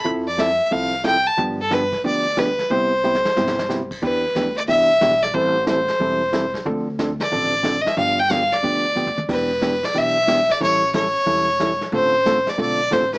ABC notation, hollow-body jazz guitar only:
X:1
M:4/4
L:1/8
Q:"Swing" 1/4=182
K:Ephr
V:1 name="Hollow-body jazz guitar"
[F,CEA] z [F,CEA] z [F,CEA] z [F,CEA] z | [D,F,B,DG] z [D,F,B,DG] z [D,F,B,DG] z [D,F,B,DG] z | [C,G,B,EG] z [C,G,B,EG] z [C,G,B,EG] z [C,G,B,EG] z | [E,B,DG] z [E,B,DG] z [E,B,DG] z [E,B,DG] z |
[E,G,CEA] z [E,G,CEA] z [E,G,CEA] z [E,G,CEA] z | [D,F,CDA] z [D,F,CDA] z [D,F,CDA] z [D,F,CDA] z | [D,F,B,DG] z [D,F,B,DG] z [D,F,B,DG] z [D,F,B,DG] z | [E,B,DG] z [E,B,DG] z [E,B,DG] z [E,B,DG] z |
[E,G,^CEA] z [E,G,CEA] z [E,G,CEA] z [E,G,CEA] z | [D,A,CFA] z [D,A,CFA] z [D,A,CFA] z [D,A,CFA] z |]